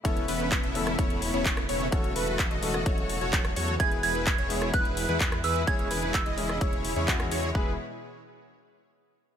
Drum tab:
HH |xxoxxxoxxxoxxxox|xxoxxxo-xxoxxxox|xxoxxxoxxxoxxxox|xxoxxxo-xxoxxxox|
CP |----x-------x---|----x-------x---|----x-------x---|----x-------x---|
SD |-------r-----r--|-------r-----r--|-------r-----r--|-------r-----r--|
BD |o---o---o---o---|o---o---o---o---|o---o---o---o---|o---o---o---o---|

HH |----------------|
CP |----------------|
SD |----------------|
BD |o---------------|